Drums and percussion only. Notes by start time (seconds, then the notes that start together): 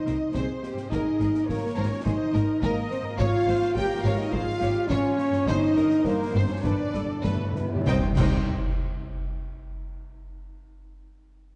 0.07 snare
0.35 concert bass drum, snare
0.63 snare
0.77 snare
0.92 concert bass drum, snare
1.20 snare
1.35 snare
1.49 concert bass drum, snare
2.06 concert bass drum, snare
2.35 snare
2.63 concert bass drum, snare
2.91 snare
3.20 concert bass drum, snare
3.48 snare
3.62 snare
3.76 concert bass drum, snare
4.33 concert bass drum
4.61 snare
4.90 concert bass drum, snare
5.18 snare
5.33 snare
5.47 concert bass drum, snare
5.77 snare
5.91 snare
6.05 concert bass drum, snare
6.64 concert bass drum, snare
6.94 snare
7.24 concert bass drum, snare
7.56 snare
7.87 concert bass drum, snare
8.17 concert bass drum, snare, crash